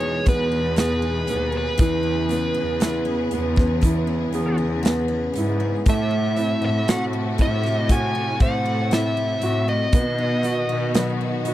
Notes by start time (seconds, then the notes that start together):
Already playing: E2 B2 G#3 B3 E4 G#4 C#5
0.00 D#4
0.26 E2 B3 B4, kick, closed hi-hat
0.52 G#4
0.76 B3 G#4 B4, snare, closed hi-hat
1.02 D#4
1.27 D#2 B3, closed hi-hat
1.52 D#4
1.57 B4
1.78 E2 C#3 E3 B3, kick, closed hi-hat
2.03 C#4
2.29 B3, closed hi-hat
2.54 E2 G#4
2.80 B3 E4, snare, closed hi-hat
3.05 C#4
3.31 E2 B3, closed hi-hat
3.56 C#4, kick, snare
3.81 E3 E4, kick, closed hi-hat
4.07 C#4
4.32 E2 B3 G#4, closed hi-hat
4.58 G#4
4.83 B3, snare, closed hi-hat
4.87 B3
5.08 C#4
5.33 G#2 B3 E4, closed hi-hat
5.60 C#4
5.86 A2 C3 A3 F#4 E5, kick, closed hi-hat
6.11 E4
6.36 C4 E4, closed hi-hat
6.62 A2 F#4 E5
6.88 C4 F#4 F#5, snare, closed hi-hat
7.13 E4
7.38 A2 C4 E4 E5, kick, closed hi-hat
7.63 E4, snare
7.80 D#5
7.89 A3 F#4 G#5, kick, closed hi-hat
8.15 E4
8.40 A2 C4 C5 F#5, kick, closed hi-hat
8.66 F#4
8.91 C4 E4 E5, snare, closed hi-hat
9.17 E4
9.42 A2 C4 F#4, closed hi-hat
9.68 E4 D#5
9.93 B2 D#3 B3 F#4, kick, closed hi-hat
10.18 D#4
10.43 B3 F#4, closed hi-hat
10.69 B2 F#4
10.94 F#3 B4, snare, closed hi-hat
11.21 D#4
11.45 B2 B3 F#4, closed hi-hat